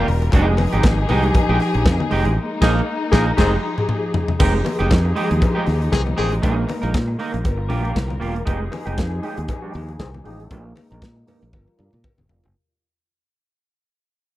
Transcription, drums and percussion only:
0.08 open hi-hat medium
0.22 closed hi-hat medium
0.32 kick loud
0.32 closed hi-hat medium
0.32 cowbell medium
0.32 muted conga medium
0.57 open hi-hat medium
0.57 cowbell medium
0.57 muted conga medium
0.73 closed hi-hat medium
0.83 kick loud
0.83 snare loud
0.83 closed hi-hat medium
0.83 cowbell medium
0.83 high conga medium
1.09 open hi-hat medium
1.09 cowbell medium
1.09 low conga medium
1.23 closed hi-hat medium
1.34 kick loud
1.34 closed hi-hat medium
1.34 cowbell medium
1.34 muted conga medium
1.34 low conga medium
1.60 snare soft
1.60 open hi-hat medium
1.74 closed hi-hat medium
1.86 kick loud
1.86 snare loud
1.86 closed hi-hat medium
1.86 cowbell loud
1.86 high conga medium
2.00 high conga medium
2.11 open hi-hat medium
2.25 closed hi-hat medium
2.62 kick loud
2.62 snare loud
2.62 crash medium
3.13 kick loud
3.13 snare loud
3.38 kick loud
3.38 snare loud
3.38 crash medium
3.78 mid tom medium
3.89 mid tom loud
4.14 floor tom loud
4.28 floor tom loud
4.40 kick loud
4.40 crash loud
4.40 cowbell medium
4.40 muted conga medium
4.65 open hi-hat medium
4.65 cowbell medium
4.65 muted conga medium
4.79 closed hi-hat soft
4.91 kick loud
4.91 snare loud
4.91 closed hi-hat medium
4.91 cowbell medium
4.91 high conga medium
5.16 open hi-hat medium
5.31 closed hi-hat medium
5.42 kick loud
5.42 closed hi-hat medium
5.42 cowbell medium
5.42 muted conga medium
5.42 low conga medium
5.66 snare soft
5.66 open hi-hat medium
5.66 muted conga soft
5.82 closed hi-hat soft
5.92 kick loud
5.92 snare loud
5.92 closed hi-hat medium
5.92 cowbell medium
5.92 high conga medium
6.07 high conga medium
6.18 open hi-hat medium
6.32 closed hi-hat medium
6.43 kick loud
6.43 closed hi-hat medium
6.43 cowbell medium
6.43 muted conga medium
6.69 open hi-hat medium
6.69 cowbell medium
6.69 muted conga medium
6.83 closed hi-hat medium
6.94 kick loud
6.94 snare loud
6.94 closed hi-hat medium
6.94 cowbell medium
6.94 high conga medium
7.19 open hi-hat medium
7.34 closed hi-hat medium
7.45 kick loud
7.45 closed hi-hat medium
7.45 cowbell medium
7.45 muted conga medium
7.70 open hi-hat medium
7.70 muted conga soft
7.70 low conga medium
7.85 closed hi-hat soft
7.96 kick loud
7.96 snare loud
7.96 closed hi-hat medium
7.96 cowbell medium
7.96 high conga medium
8.10 high conga medium
8.22 open hi-hat medium
8.36 closed hi-hat medium
8.47 kick loud
8.47 closed hi-hat medium
8.47 cowbell medium
8.47 muted conga medium
8.72 open hi-hat medium
8.72 cowbell medium
8.72 muted conga medium
8.87 closed hi-hat soft
8.98 kick loud
8.98 snare loud
8.98 closed hi-hat medium
8.98 cowbell medium
8.98 high conga medium
9.23 open hi-hat medium
9.37 closed hi-hat medium
9.48 kick loud
9.48 closed hi-hat medium
9.48 cowbell medium
9.48 muted conga medium
9.48 low conga medium
9.73 open hi-hat medium
9.88 closed hi-hat soft
9.99 kick loud
9.99 snare loud
9.99 closed hi-hat medium
9.99 cowbell medium
9.99 high conga medium
10.14 high conga medium
10.25 open hi-hat medium
10.40 closed hi-hat soft
10.51 kick loud
10.51 closed hi-hat medium
10.51 cowbell medium
10.51 muted conga medium
10.76 open hi-hat medium
10.76 cowbell medium
10.76 muted conga medium
10.91 closed hi-hat soft
11.02 kick loud
11.02 snare loud
11.02 closed hi-hat medium
11.02 cowbell medium
11.02 high conga medium
11.27 open hi-hat medium
11.27 cowbell medium
11.27 low conga medium
11.42 closed hi-hat soft
11.53 kick loud
11.53 high tom medium
11.53 cowbell medium
11.53 muted conga medium
11.68 high tom medium
11.79 mid tom medium
11.79 muted conga soft
11.93 mid tom medium
12.04 kick loud
12.04 mid tom medium
12.04 cowbell medium
12.04 high conga medium
12.18 mid tom medium
12.18 high conga medium
12.29 floor tom loud
12.44 floor tom loud

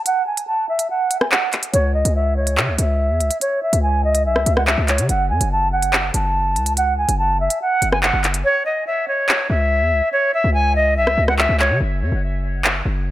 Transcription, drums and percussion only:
0.06 closed hi-hat medium
0.37 closed hi-hat medium
0.79 closed hi-hat medium
1.11 closed hi-hat medium
1.21 cross-stick medium
1.32 clap loud
1.53 clap medium
1.53 closed hi-hat medium
1.63 closed hi-hat medium
1.74 closed hi-hat medium
2.05 closed hi-hat medium
2.47 closed hi-hat medium
2.57 clap loud
2.78 closed hi-hat medium
3.20 closed hi-hat medium
3.31 closed hi-hat medium
3.41 closed hi-hat medium
3.73 closed hi-hat medium
4.15 closed hi-hat medium
4.36 cross-stick medium
4.46 closed hi-hat medium
4.57 cross-stick medium
4.67 clap loud
4.88 clap medium
4.88 closed hi-hat medium
4.98 closed hi-hat medium
5.09 closed hi-hat medium
5.41 closed hi-hat medium
5.82 closed hi-hat medium
5.93 clap loud
6.14 closed hi-hat medium
6.56 closed hi-hat medium
6.66 closed hi-hat medium
6.77 closed hi-hat medium
7.09 closed hi-hat medium
7.50 closed hi-hat medium
7.82 closed hi-hat medium
7.92 cross-stick medium
8.03 clap loud
8.24 clap medium
8.24 closed hi-hat medium
8.34 closed hi-hat medium
9.29 clap loud
11.07 cross-stick medium
11.28 cross-stick medium
11.39 clap loud
11.60 clap medium
12.64 clap loud

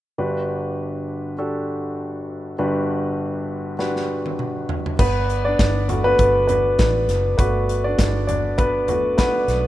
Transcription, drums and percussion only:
3.79 snare soft
3.96 snare soft
4.26 high tom medium
4.39 mid tom medium
4.69 floor tom medium
4.86 floor tom medium
4.99 kick loud
4.99 crash medium
5.30 closed hi-hat medium
5.59 kick loud
5.59 snare loud
5.59 closed hi-hat medium
5.89 closed hi-hat medium
5.89 floor tom medium
6.19 kick loud
6.19 closed hi-hat medium
6.49 closed hi-hat medium
6.49 floor tom medium
6.79 kick loud
6.79 snare medium
6.79 closed hi-hat medium
7.09 snare soft
7.09 closed hi-hat medium
7.39 kick loud
7.39 closed hi-hat medium
7.69 closed hi-hat medium
7.99 kick loud
7.99 snare loud
7.99 closed hi-hat medium
8.29 closed hi-hat medium
8.29 floor tom medium
8.58 kick loud
8.58 closed hi-hat medium
8.88 closed hi-hat medium
8.88 floor tom medium
9.18 kick medium
9.18 snare medium
9.18 closed hi-hat medium
9.48 snare soft
9.48 closed hi-hat medium

